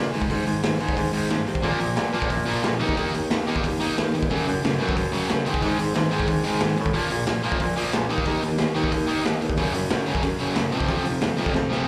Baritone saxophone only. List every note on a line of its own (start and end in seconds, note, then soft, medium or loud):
0.00 0.12 A#2 loud
0.13 0.29 G#2 medium
0.30 0.46 G#2 medium
0.46 0.62 G#2 medium
0.63 0.79 G#2 medium
0.79 0.96 G#2 medium
0.97 1.12 G#2 medium
1.13 1.29 G#2 medium
1.30 1.46 G#2 medium
1.46 1.63 C3 medium
1.63 1.79 A#2 loud
1.80 1.96 A#2 medium
1.96 2.12 A#2 medium
2.13 2.29 A#2 medium
2.31 2.46 A#2 medium
2.46 2.62 A#2 medium
2.64 2.82 A#2 loud
2.80 2.96 D#2 medium
2.97 3.13 D#2 medium
3.14 3.30 D#2 medium
3.31 3.46 D#2 medium
3.47 3.63 D#2 medium
3.64 3.80 D#2 medium
3.81 3.96 D#2 medium
3.97 4.13 D#2 medium
4.15 4.33 D#2 medium
4.31 4.46 F#2 medium
4.47 4.63 F#2 loud
4.64 4.80 F#2 medium
4.81 4.96 F#2 medium
4.97 5.12 F#2 medium
5.13 5.29 F#2 medium
5.30 5.45 F#2 medium
5.62 5.78 G#2 medium
5.80 5.95 G#2 medium
5.96 6.11 G#2 medium
6.12 6.27 G#2 medium
6.28 6.44 G#2 loud
6.46 6.61 G#2 medium
6.62 6.78 G#2 medium
6.79 6.94 A2 loud
6.95 7.10 A#2 medium
7.11 7.26 A#2 medium
7.27 7.43 A#2 medium
7.44 7.60 A#2 medium
7.60 7.76 A#2 medium
7.77 7.93 A#2 medium
7.94 8.08 C#2 loud
8.09 8.25 D#2 medium
8.26 8.42 D#2 medium
8.43 8.58 D#2 medium
8.59 8.74 D#2 medium
8.75 8.91 D#2 medium
8.92 9.08 D#2 loud
9.08 9.24 D#2 medium
9.25 9.41 D#2 medium
9.41 9.57 D#2 medium
9.58 9.73 F#2 medium
9.74 9.90 F#2 medium
9.91 10.06 F#2 loud
10.07 10.22 F#2 medium
10.23 10.39 F#2 loud
10.41 10.56 F#2 medium
10.56 10.72 F#2 medium
10.73 10.88 F2 medium
10.88 11.04 F2 medium
11.05 11.21 F2 medium
11.22 11.37 F2 medium
11.39 11.54 F2 medium
11.55 11.70 F2 loud
11.71 11.86 F2 medium